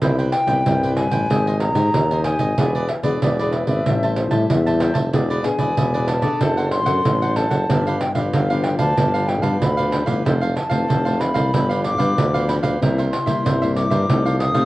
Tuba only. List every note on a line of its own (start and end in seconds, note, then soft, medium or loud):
0.02 0.29 C2 loud
0.47 0.62 C2 medium
0.66 1.07 C2 medium
1.11 1.26 A1 medium
1.30 1.77 G#1 loud
1.75 1.90 G#2 medium
1.94 2.35 D#2 loud
2.39 2.54 G#1 medium
2.58 2.85 E1 loud
3.03 3.18 E1 medium
3.22 3.62 E1 loud
3.67 3.82 G#1 loud
3.86 4.33 A1 medium
4.31 4.46 A2 medium
4.50 4.91 E2 loud
4.95 5.10 F1 medium
5.13 5.41 E1 loud
5.59 5.74 E1 medium
5.78 6.18 E1 loud
6.42 6.88 F#1 medium
6.87 7.02 F#2 medium
7.05 7.46 A1 loud
7.51 7.66 F#1 medium
7.69 7.97 G1 loud
8.15 8.30 G1 medium
8.34 8.74 G1 loud
8.79 8.94 D2 medium
8.98 9.44 G1 loud
9.43 9.58 G2 medium
9.61 10.02 D2 loud
10.07 10.22 G1 medium
10.26 10.53 F1 loud
10.71 10.86 F1 medium
10.90 11.31 F1 medium
11.35 11.50 C2 medium
11.54 12.00 G1 medium
11.99 12.14 G2 medium
12.17 12.58 D2 loud
12.63 12.78 D2 medium
12.81 13.09 C2 loud
13.45 13.86 C2 medium
13.91 14.05 G2 medium
14.10 14.57 C2 medium
14.55 14.65 C3 medium